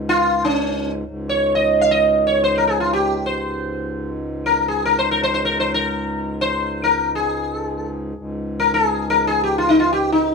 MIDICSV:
0, 0, Header, 1, 3, 480
1, 0, Start_track
1, 0, Tempo, 500000
1, 9931, End_track
2, 0, Start_track
2, 0, Title_t, "Sitar"
2, 0, Program_c, 0, 104
2, 87, Note_on_c, 0, 65, 90
2, 408, Note_off_c, 0, 65, 0
2, 427, Note_on_c, 0, 61, 75
2, 885, Note_off_c, 0, 61, 0
2, 1241, Note_on_c, 0, 73, 73
2, 1483, Note_off_c, 0, 73, 0
2, 1489, Note_on_c, 0, 75, 72
2, 1735, Note_off_c, 0, 75, 0
2, 1741, Note_on_c, 0, 77, 83
2, 1834, Note_off_c, 0, 77, 0
2, 1834, Note_on_c, 0, 75, 80
2, 2173, Note_off_c, 0, 75, 0
2, 2177, Note_on_c, 0, 73, 76
2, 2332, Note_off_c, 0, 73, 0
2, 2339, Note_on_c, 0, 72, 80
2, 2461, Note_off_c, 0, 72, 0
2, 2473, Note_on_c, 0, 70, 68
2, 2562, Note_off_c, 0, 70, 0
2, 2566, Note_on_c, 0, 68, 70
2, 2674, Note_off_c, 0, 68, 0
2, 2690, Note_on_c, 0, 65, 69
2, 2808, Note_off_c, 0, 65, 0
2, 2816, Note_on_c, 0, 67, 77
2, 3128, Note_off_c, 0, 67, 0
2, 3129, Note_on_c, 0, 72, 69
2, 3945, Note_off_c, 0, 72, 0
2, 4280, Note_on_c, 0, 70, 78
2, 4491, Note_off_c, 0, 70, 0
2, 4495, Note_on_c, 0, 68, 69
2, 4650, Note_off_c, 0, 68, 0
2, 4660, Note_on_c, 0, 70, 81
2, 4786, Note_on_c, 0, 72, 87
2, 4790, Note_off_c, 0, 70, 0
2, 4903, Note_off_c, 0, 72, 0
2, 4907, Note_on_c, 0, 70, 76
2, 5016, Note_off_c, 0, 70, 0
2, 5024, Note_on_c, 0, 72, 84
2, 5115, Note_off_c, 0, 72, 0
2, 5127, Note_on_c, 0, 72, 87
2, 5228, Note_off_c, 0, 72, 0
2, 5232, Note_on_c, 0, 70, 80
2, 5352, Note_off_c, 0, 70, 0
2, 5374, Note_on_c, 0, 72, 81
2, 5487, Note_off_c, 0, 72, 0
2, 5513, Note_on_c, 0, 70, 82
2, 6151, Note_off_c, 0, 70, 0
2, 6155, Note_on_c, 0, 72, 80
2, 6554, Note_off_c, 0, 72, 0
2, 6563, Note_on_c, 0, 70, 76
2, 6832, Note_off_c, 0, 70, 0
2, 6867, Note_on_c, 0, 68, 66
2, 7962, Note_off_c, 0, 68, 0
2, 8251, Note_on_c, 0, 70, 79
2, 8385, Note_off_c, 0, 70, 0
2, 8389, Note_on_c, 0, 68, 83
2, 8732, Note_off_c, 0, 68, 0
2, 8735, Note_on_c, 0, 70, 89
2, 8898, Note_off_c, 0, 70, 0
2, 8902, Note_on_c, 0, 68, 83
2, 9053, Note_off_c, 0, 68, 0
2, 9057, Note_on_c, 0, 67, 72
2, 9187, Note_off_c, 0, 67, 0
2, 9198, Note_on_c, 0, 65, 75
2, 9301, Note_off_c, 0, 65, 0
2, 9301, Note_on_c, 0, 63, 69
2, 9406, Note_on_c, 0, 65, 73
2, 9407, Note_off_c, 0, 63, 0
2, 9525, Note_off_c, 0, 65, 0
2, 9529, Note_on_c, 0, 67, 74
2, 9714, Note_off_c, 0, 67, 0
2, 9718, Note_on_c, 0, 63, 67
2, 9929, Note_off_c, 0, 63, 0
2, 9929, Note_on_c, 0, 64, 67
2, 9931, Note_off_c, 0, 64, 0
2, 9931, End_track
3, 0, Start_track
3, 0, Title_t, "Harmonium"
3, 0, Program_c, 1, 20
3, 0, Note_on_c, 1, 37, 60
3, 0, Note_on_c, 1, 44, 58
3, 991, Note_off_c, 1, 37, 0
3, 995, Note_off_c, 1, 44, 0
3, 1005, Note_on_c, 1, 37, 57
3, 1009, Note_on_c, 1, 44, 59
3, 7805, Note_off_c, 1, 37, 0
3, 7813, Note_off_c, 1, 44, 0
3, 7820, Note_on_c, 1, 37, 59
3, 7827, Note_on_c, 1, 44, 58
3, 9931, Note_off_c, 1, 37, 0
3, 9931, Note_off_c, 1, 44, 0
3, 9931, End_track
0, 0, End_of_file